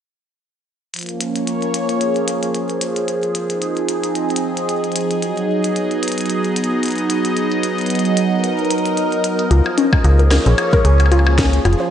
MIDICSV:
0, 0, Header, 1, 6, 480
1, 0, Start_track
1, 0, Tempo, 535714
1, 840, Time_signature, 4, 2, 24, 8
1, 10666, End_track
2, 0, Start_track
2, 0, Title_t, "Synth arpeggio sound"
2, 0, Program_c, 0, 84
2, 8520, Note_on_c, 0, 65, 100
2, 8600, Note_off_c, 0, 65, 0
2, 8760, Note_on_c, 0, 61, 98
2, 8840, Note_off_c, 0, 61, 0
2, 9000, Note_on_c, 0, 65, 78
2, 9080, Note_off_c, 0, 65, 0
2, 9134, Note_on_c, 0, 70, 71
2, 9229, Note_off_c, 0, 70, 0
2, 9374, Note_on_c, 0, 68, 73
2, 9437, Note_off_c, 0, 68, 0
2, 9614, Note_on_c, 0, 70, 98
2, 9677, Note_off_c, 0, 70, 0
2, 9719, Note_on_c, 0, 68, 93
2, 9840, Note_off_c, 0, 68, 0
2, 9960, Note_on_c, 0, 65, 98
2, 10040, Note_off_c, 0, 65, 0
2, 10199, Note_on_c, 0, 61, 93
2, 10280, Note_off_c, 0, 61, 0
2, 10440, Note_on_c, 0, 65, 78
2, 10520, Note_off_c, 0, 65, 0
2, 10574, Note_on_c, 0, 72, 74
2, 10666, Note_off_c, 0, 72, 0
2, 10666, End_track
3, 0, Start_track
3, 0, Title_t, "Analog synth pad"
3, 0, Program_c, 1, 89
3, 840, Note_on_c, 1, 53, 81
3, 905, Note_on_c, 1, 58, 67
3, 967, Note_on_c, 1, 61, 67
3, 1175, Note_on_c, 1, 73, 68
3, 1716, Note_on_c, 1, 68, 82
3, 2760, Note_off_c, 1, 73, 0
3, 2761, Note_off_c, 1, 61, 0
3, 2913, Note_on_c, 1, 60, 66
3, 3110, Note_on_c, 1, 63, 81
3, 3534, Note_off_c, 1, 58, 0
3, 3637, Note_on_c, 1, 75, 77
3, 4680, Note_off_c, 1, 53, 0
3, 4681, Note_off_c, 1, 60, 0
3, 4681, Note_on_c, 1, 54, 67
3, 5044, Note_on_c, 1, 59, 71
3, 7374, Note_off_c, 1, 68, 0
3, 7476, Note_on_c, 1, 70, 83
3, 8520, Note_on_c, 1, 53, 72
3, 8521, Note_off_c, 1, 54, 0
3, 8521, Note_off_c, 1, 59, 0
3, 8917, Note_on_c, 1, 58, 67
3, 8953, Note_on_c, 1, 68, 85
3, 9204, Note_off_c, 1, 75, 0
3, 9269, Note_off_c, 1, 70, 0
3, 9285, Note_on_c, 1, 73, 78
3, 9295, Note_off_c, 1, 63, 0
3, 9395, Note_on_c, 1, 61, 80
3, 10440, Note_off_c, 1, 61, 0
3, 10440, Note_off_c, 1, 73, 0
3, 10666, Note_off_c, 1, 53, 0
3, 10666, Note_off_c, 1, 58, 0
3, 10666, Note_off_c, 1, 68, 0
3, 10666, End_track
4, 0, Start_track
4, 0, Title_t, "FM bass"
4, 0, Program_c, 2, 39
4, 8520, Note_on_c, 2, 37, 91
4, 8612, Note_off_c, 2, 37, 0
4, 9000, Note_on_c, 2, 37, 91
4, 9307, Note_off_c, 2, 37, 0
4, 9374, Note_on_c, 2, 34, 99
4, 9447, Note_off_c, 2, 34, 0
4, 9720, Note_on_c, 2, 37, 96
4, 10387, Note_off_c, 2, 37, 0
4, 10440, Note_on_c, 2, 29, 93
4, 10532, Note_off_c, 2, 29, 0
4, 10666, End_track
5, 0, Start_track
5, 0, Title_t, "Percussion blips"
5, 8654, Note_on_c, 9, 76, 45
5, 8744, Note_off_c, 9, 76, 0
5, 8894, Note_on_c, 9, 76, 68
5, 8984, Note_off_c, 9, 76, 0
5, 9240, Note_on_c, 9, 76, 45
5, 9330, Note_off_c, 9, 76, 0
5, 9480, Note_on_c, 9, 76, 70
5, 9570, Note_off_c, 9, 76, 0
5, 9855, Note_on_c, 9, 76, 44
5, 9907, Note_off_c, 9, 76, 0
5, 9907, Note_on_c, 9, 76, 37
5, 9960, Note_off_c, 9, 76, 0
5, 9960, Note_on_c, 9, 76, 30
5, 10027, Note_off_c, 9, 76, 0
5, 10027, Note_on_c, 9, 76, 24
5, 10094, Note_off_c, 9, 76, 0
5, 10094, Note_on_c, 9, 76, 69
5, 10184, Note_off_c, 9, 76, 0
5, 10440, Note_on_c, 9, 76, 46
5, 10530, Note_off_c, 9, 76, 0
5, 10666, End_track
6, 0, Start_track
6, 0, Title_t, "Drums"
6, 841, Note_on_c, 9, 42, 46
6, 863, Note_off_c, 9, 42, 0
6, 863, Note_on_c, 9, 42, 37
6, 885, Note_off_c, 9, 42, 0
6, 885, Note_on_c, 9, 42, 31
6, 907, Note_off_c, 9, 42, 0
6, 907, Note_on_c, 9, 42, 25
6, 920, Note_off_c, 9, 42, 0
6, 920, Note_on_c, 9, 42, 20
6, 952, Note_off_c, 9, 42, 0
6, 952, Note_on_c, 9, 42, 17
6, 975, Note_off_c, 9, 42, 0
6, 975, Note_on_c, 9, 42, 24
6, 1064, Note_off_c, 9, 42, 0
6, 1080, Note_on_c, 9, 42, 82
6, 1170, Note_off_c, 9, 42, 0
6, 1215, Note_on_c, 9, 42, 49
6, 1304, Note_off_c, 9, 42, 0
6, 1320, Note_on_c, 9, 42, 50
6, 1410, Note_off_c, 9, 42, 0
6, 1454, Note_on_c, 9, 42, 23
6, 1544, Note_off_c, 9, 42, 0
6, 1560, Note_on_c, 9, 42, 87
6, 1650, Note_off_c, 9, 42, 0
6, 1694, Note_on_c, 9, 42, 49
6, 1784, Note_off_c, 9, 42, 0
6, 1800, Note_on_c, 9, 42, 49
6, 1890, Note_off_c, 9, 42, 0
6, 1935, Note_on_c, 9, 42, 24
6, 2024, Note_off_c, 9, 42, 0
6, 2040, Note_on_c, 9, 42, 84
6, 2130, Note_off_c, 9, 42, 0
6, 2175, Note_on_c, 9, 42, 49
6, 2264, Note_off_c, 9, 42, 0
6, 2281, Note_on_c, 9, 42, 50
6, 2370, Note_off_c, 9, 42, 0
6, 2415, Note_on_c, 9, 42, 23
6, 2505, Note_off_c, 9, 42, 0
6, 2521, Note_on_c, 9, 42, 86
6, 2610, Note_off_c, 9, 42, 0
6, 2655, Note_on_c, 9, 42, 47
6, 2744, Note_off_c, 9, 42, 0
6, 2761, Note_on_c, 9, 42, 49
6, 2850, Note_off_c, 9, 42, 0
6, 2895, Note_on_c, 9, 42, 24
6, 2985, Note_off_c, 9, 42, 0
6, 3001, Note_on_c, 9, 42, 86
6, 3090, Note_off_c, 9, 42, 0
6, 3135, Note_on_c, 9, 42, 49
6, 3225, Note_off_c, 9, 42, 0
6, 3241, Note_on_c, 9, 42, 50
6, 3330, Note_off_c, 9, 42, 0
6, 3376, Note_on_c, 9, 42, 24
6, 3465, Note_off_c, 9, 42, 0
6, 3481, Note_on_c, 9, 42, 86
6, 3571, Note_off_c, 9, 42, 0
6, 3615, Note_on_c, 9, 42, 51
6, 3705, Note_off_c, 9, 42, 0
6, 3721, Note_on_c, 9, 42, 49
6, 3811, Note_off_c, 9, 42, 0
6, 3855, Note_on_c, 9, 42, 24
6, 3908, Note_off_c, 9, 42, 0
6, 3908, Note_on_c, 9, 42, 87
6, 3998, Note_off_c, 9, 42, 0
6, 4095, Note_on_c, 9, 42, 50
6, 4185, Note_off_c, 9, 42, 0
6, 4201, Note_on_c, 9, 42, 52
6, 4291, Note_off_c, 9, 42, 0
6, 4335, Note_on_c, 9, 42, 23
6, 4406, Note_off_c, 9, 42, 0
6, 4406, Note_on_c, 9, 42, 19
6, 4440, Note_off_c, 9, 42, 0
6, 4440, Note_on_c, 9, 42, 88
6, 4486, Note_off_c, 9, 42, 0
6, 4486, Note_on_c, 9, 42, 16
6, 4575, Note_off_c, 9, 42, 0
6, 4575, Note_on_c, 9, 42, 47
6, 4665, Note_off_c, 9, 42, 0
6, 4681, Note_on_c, 9, 42, 50
6, 4770, Note_off_c, 9, 42, 0
6, 4815, Note_on_c, 9, 42, 23
6, 4905, Note_off_c, 9, 42, 0
6, 5055, Note_on_c, 9, 42, 48
6, 5145, Note_off_c, 9, 42, 0
6, 5161, Note_on_c, 9, 42, 49
6, 5250, Note_off_c, 9, 42, 0
6, 5295, Note_on_c, 9, 42, 23
6, 5385, Note_off_c, 9, 42, 0
6, 5401, Note_on_c, 9, 42, 81
6, 5445, Note_off_c, 9, 42, 0
6, 5445, Note_on_c, 9, 42, 67
6, 5481, Note_off_c, 9, 42, 0
6, 5481, Note_on_c, 9, 42, 55
6, 5535, Note_off_c, 9, 42, 0
6, 5535, Note_on_c, 9, 42, 49
6, 5560, Note_off_c, 9, 42, 0
6, 5560, Note_on_c, 9, 42, 37
6, 5605, Note_off_c, 9, 42, 0
6, 5605, Note_on_c, 9, 42, 29
6, 5641, Note_off_c, 9, 42, 0
6, 5641, Note_on_c, 9, 42, 50
6, 5730, Note_off_c, 9, 42, 0
6, 5775, Note_on_c, 9, 42, 23
6, 5864, Note_off_c, 9, 42, 0
6, 5880, Note_on_c, 9, 42, 83
6, 5947, Note_off_c, 9, 42, 0
6, 5947, Note_on_c, 9, 42, 47
6, 6037, Note_off_c, 9, 42, 0
6, 6120, Note_on_c, 9, 42, 47
6, 6143, Note_off_c, 9, 42, 0
6, 6143, Note_on_c, 9, 42, 39
6, 6165, Note_off_c, 9, 42, 0
6, 6165, Note_on_c, 9, 42, 32
6, 6187, Note_off_c, 9, 42, 0
6, 6187, Note_on_c, 9, 42, 26
6, 6200, Note_off_c, 9, 42, 0
6, 6200, Note_on_c, 9, 42, 21
6, 6232, Note_off_c, 9, 42, 0
6, 6232, Note_on_c, 9, 42, 17
6, 6254, Note_off_c, 9, 42, 0
6, 6254, Note_on_c, 9, 42, 25
6, 6344, Note_off_c, 9, 42, 0
6, 6360, Note_on_c, 9, 42, 84
6, 6449, Note_off_c, 9, 42, 0
6, 6494, Note_on_c, 9, 42, 49
6, 6584, Note_off_c, 9, 42, 0
6, 6600, Note_on_c, 9, 42, 49
6, 6690, Note_off_c, 9, 42, 0
6, 6734, Note_on_c, 9, 42, 22
6, 6824, Note_off_c, 9, 42, 0
6, 6840, Note_on_c, 9, 42, 80
6, 6930, Note_off_c, 9, 42, 0
6, 6975, Note_on_c, 9, 42, 21
6, 7000, Note_off_c, 9, 42, 0
6, 7000, Note_on_c, 9, 42, 26
6, 7045, Note_off_c, 9, 42, 0
6, 7045, Note_on_c, 9, 42, 30
6, 7080, Note_off_c, 9, 42, 0
6, 7080, Note_on_c, 9, 42, 48
6, 7125, Note_off_c, 9, 42, 0
6, 7125, Note_on_c, 9, 42, 39
6, 7160, Note_off_c, 9, 42, 0
6, 7160, Note_on_c, 9, 42, 42
6, 7215, Note_off_c, 9, 42, 0
6, 7215, Note_on_c, 9, 42, 23
6, 7304, Note_off_c, 9, 42, 0
6, 7320, Note_on_c, 9, 42, 83
6, 7410, Note_off_c, 9, 42, 0
6, 7560, Note_on_c, 9, 42, 48
6, 7650, Note_off_c, 9, 42, 0
6, 7695, Note_on_c, 9, 42, 11
6, 7748, Note_off_c, 9, 42, 0
6, 7748, Note_on_c, 9, 42, 13
6, 7800, Note_off_c, 9, 42, 0
6, 7800, Note_on_c, 9, 42, 80
6, 7867, Note_off_c, 9, 42, 0
6, 7867, Note_on_c, 9, 42, 18
6, 7934, Note_off_c, 9, 42, 0
6, 7934, Note_on_c, 9, 42, 49
6, 8024, Note_off_c, 9, 42, 0
6, 8040, Note_on_c, 9, 42, 49
6, 8130, Note_off_c, 9, 42, 0
6, 8174, Note_on_c, 9, 42, 23
6, 8264, Note_off_c, 9, 42, 0
6, 8280, Note_on_c, 9, 42, 85
6, 8369, Note_off_c, 9, 42, 0
6, 8414, Note_on_c, 9, 42, 47
6, 8504, Note_off_c, 9, 42, 0
6, 8520, Note_on_c, 9, 42, 45
6, 8609, Note_off_c, 9, 42, 0
6, 8760, Note_on_c, 9, 42, 79
6, 8849, Note_off_c, 9, 42, 0
6, 8895, Note_on_c, 9, 36, 93
6, 8984, Note_off_c, 9, 36, 0
6, 9000, Note_on_c, 9, 42, 47
6, 9090, Note_off_c, 9, 42, 0
6, 9135, Note_on_c, 9, 42, 22
6, 9224, Note_off_c, 9, 42, 0
6, 9240, Note_on_c, 9, 38, 108
6, 9240, Note_on_c, 9, 42, 79
6, 9330, Note_off_c, 9, 38, 0
6, 9330, Note_off_c, 9, 42, 0
6, 9374, Note_on_c, 9, 42, 45
6, 9464, Note_off_c, 9, 42, 0
6, 9480, Note_on_c, 9, 42, 46
6, 9570, Note_off_c, 9, 42, 0
6, 9614, Note_on_c, 9, 36, 111
6, 9615, Note_on_c, 9, 42, 22
6, 9704, Note_off_c, 9, 36, 0
6, 9704, Note_off_c, 9, 42, 0
6, 9720, Note_on_c, 9, 42, 79
6, 9810, Note_off_c, 9, 42, 0
6, 9855, Note_on_c, 9, 42, 46
6, 9944, Note_off_c, 9, 42, 0
6, 9960, Note_on_c, 9, 42, 48
6, 10050, Note_off_c, 9, 42, 0
6, 10200, Note_on_c, 9, 36, 99
6, 10200, Note_on_c, 9, 38, 106
6, 10200, Note_on_c, 9, 42, 80
6, 10289, Note_off_c, 9, 36, 0
6, 10290, Note_off_c, 9, 38, 0
6, 10290, Note_off_c, 9, 42, 0
6, 10334, Note_on_c, 9, 42, 45
6, 10424, Note_off_c, 9, 42, 0
6, 10440, Note_on_c, 9, 42, 46
6, 10507, Note_off_c, 9, 42, 0
6, 10507, Note_on_c, 9, 42, 23
6, 10597, Note_off_c, 9, 42, 0
6, 10666, End_track
0, 0, End_of_file